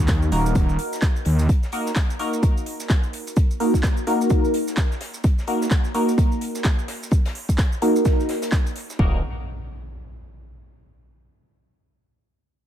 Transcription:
0.00 D#2
0.08 kick, snare, clap, closed hi-hat, maracas
0.22 maracas
0.32 D#1 A#3 D#4 F#4 A#4, closed hi-hat, open hi-hat
0.46 maracas
0.55 D#1, kick, closed hi-hat, maracas
0.69 maracas
0.79 closed hi-hat, open hi-hat
0.93 snare, maracas
1.02 kick, snare, clap, closed hi-hat, maracas
1.16 closed hi-hat, maracas
1.25 D#2, snare, closed hi-hat, open hi-hat
1.39 snare, maracas
1.49 kick, closed hi-hat, maracas
1.63 snare, maracas
1.72 A#3 D#4 F#4 A#4, closed hi-hat, open hi-hat
1.87 snare, maracas
1.95 kick, snare, clap, closed hi-hat, maracas
2.09 snare, maracas
2.19 A#3 D#4 F#4 A#4, closed hi-hat, open hi-hat
2.33 maracas
2.43 kick, closed hi-hat, maracas
2.57 maracas
2.66 closed hi-hat, open hi-hat
2.80 snare, maracas
2.89 kick, snare, clap, closed hi-hat, maracas
3.03 maracas
3.13 closed hi-hat, open hi-hat
3.27 closed hi-hat, maracas
3.36 kick, closed hi-hat, maracas
3.51 maracas
3.60 A#3 D#4 F#4 A#4, closed hi-hat, open hi-hat
3.74 kick, snare, maracas
3.83 kick, snare, clap, closed hi-hat, maracas
3.97 maracas
4.07 A#3 D#4 F#4 A#4, closed hi-hat, open hi-hat
4.21 maracas
4.30 kick, closed hi-hat, maracas
4.45 maracas
4.54 closed hi-hat, open hi-hat
4.68 snare, maracas
4.77 kick, clap, closed hi-hat, maracas
4.91 snare, maracas
5.01 snare, closed hi-hat, open hi-hat
5.14 snare, maracas
5.24 kick, closed hi-hat, maracas
5.38 snare, maracas
5.47 A#3 D#4 F#4 A#4, closed hi-hat, open hi-hat
5.62 snare, maracas
5.71 kick, snare, clap, closed hi-hat, maracas
5.84 snare, maracas
5.94 A#3 D#4 F#4 A#4, closed hi-hat, open hi-hat
6.09 maracas
6.18 kick, closed hi-hat, maracas
6.32 maracas
6.41 closed hi-hat, open hi-hat
6.55 snare, maracas
6.64 kick, snare, clap, closed hi-hat, maracas
6.79 maracas
6.88 snare, closed hi-hat, open hi-hat
7.02 snare, maracas
7.11 kick, closed hi-hat, maracas
7.26 snare, closed hi-hat, maracas
7.35 snare, open hi-hat
7.49 kick, closed hi-hat, maracas
7.58 kick, snare, clap, closed hi-hat, maracas
7.72 maracas
7.82 A#3 D#4 F#4 A#4, closed hi-hat, open hi-hat
7.96 maracas
8.05 kick, snare, closed hi-hat, maracas
8.20 snare, maracas
8.29 snare, closed hi-hat, open hi-hat
8.42 snare, closed hi-hat, maracas
8.52 kick, snare, clap, closed hi-hat, maracas
8.66 closed hi-hat, maracas
8.76 snare, closed hi-hat, open hi-hat
8.90 snare, maracas
8.99 D#1 A#3 D#4 F#4 A#4, kick, impact

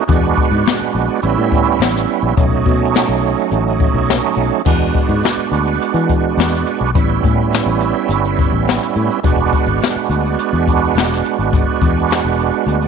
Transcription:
0.08 E2 G#3 B3 D4 F#4, kick, closed hi-hat
0.38 kick
0.51 G#2
0.66 snare, closed hi-hat
0.81 muted fingered electric bass stroke
0.95 A#1
1.22 A1 G3 B3 C#4 E4, closed hi-hat
1.38 A2
1.52 kick
1.80 A1, snare, closed hi-hat
1.96 snare
2.23 A#1
2.36 B1 F#3 A3 C#4 D#4, kick, closed hi-hat
2.66 B2, kick
2.94 snare, closed hi-hat
3.09 B1
3.51 A1, closed hi-hat
3.80 kick
3.94 B1
4.08 snare, closed hi-hat
4.37 B1
4.65 E2 G#3 B3 D4 F#4, kick, crash
4.95 kick, closed hi-hat
5.09 G#2, closed hi-hat
5.23 snare, closed hi-hat
5.37 muted fingered electric bass stroke, closed hi-hat
5.51 D2, closed hi-hat
5.67 closed hi-hat
5.81 closed hi-hat
5.94 E3, closed hi-hat
6.09 kick, closed hi-hat
6.37 E2, snare, closed hi-hat
6.55 snare
6.67 closed hi-hat
6.81 B1, closed hi-hat
6.95 A1 G3 B3 C#4 E4, kick, closed hi-hat
7.24 A2, kick, closed hi-hat
7.53 snare, closed hi-hat
7.66 A1
7.81 closed hi-hat
8.09 G1, closed hi-hat
8.25 closed hi-hat
8.39 kick, closed hi-hat
8.52 A1
8.67 snare, closed hi-hat
8.83 snare
8.96 A2, closed hi-hat
9.10 closed hi-hat
9.24 E1 G#3 B3 D4 F#4, kick, closed hi-hat
9.53 kick, closed hi-hat
9.66 G#1, closed hi-hat
9.82 snare, closed hi-hat
9.96 muted fingered electric bass stroke, closed hi-hat
10.09 D2, closed hi-hat
10.25 closed hi-hat
10.39 closed hi-hat
10.53 E2, closed hi-hat
10.68 kick, closed hi-hat
10.95 E1, snare, closed hi-hat
11.13 snare
11.25 closed hi-hat
11.39 G#1, closed hi-hat
11.53 kick, closed hi-hat
11.82 E2, kick, closed hi-hat
12.11 snare, closed hi-hat
12.24 E1
12.40 closed hi-hat
12.66 D2, closed hi-hat
12.82 closed hi-hat

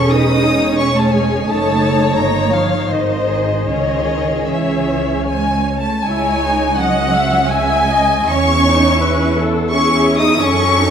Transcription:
Already playing: E1 C#4 G#4 A4 C#6
0.10 D#4 B4 D#6
0.46 C#5
0.78 C#4 G#4 C#6
0.94 A3 A5
1.12 G#3 G#5
1.47 F#1 A3 D#4 A4 C#5 A5
2.15 G1 A#3 D#4 C#5 A#5
2.52 F3 F5
2.88 G#1 D#3 D#4 C5 D#5
3.28 G#4
3.67 C#2 D#3 C#4 G#4 C#5 D#5
4.48 E3 C#4 C#5 E5
5.26 G#3 G#5
5.80 A3 A5
6.05 C#2 G#3 E4 C#5 G#5
6.42 D#4
6.76 F#3 C#4 D#5 F#5
7.13 E5
7.49 G#3 E5 G#5
7.88 D#5
8.26 E2 C#4 C#5 C#6
8.66 D#4
9.01 E4 B4
9.36 A4
9.71 C#4 E4 G#4 C#6
10.18 D#4 D#6
10.40 F#2 C#4 A4 C#6
10.78 D#4

